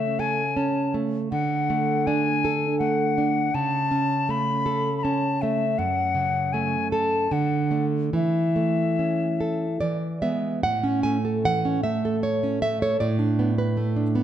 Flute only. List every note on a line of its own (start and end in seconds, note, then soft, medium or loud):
0.00 0.21 E5 medium
0.20 0.58 G#5 medium
0.57 0.94 A5 medium
1.32 2.08 F#5 medium
2.07 2.79 G#5 medium
2.79 3.56 F#5 medium
3.55 4.32 A5 medium
4.31 4.97 B5 medium
4.98 5.05 B5 medium
5.03 5.43 A5 medium
5.42 5.80 E5 medium
5.78 6.54 F#5 medium
6.53 6.91 G#5 medium
6.92 7.34 A5 medium
7.32 7.85 F#5 medium
8.15 9.79 E5 medium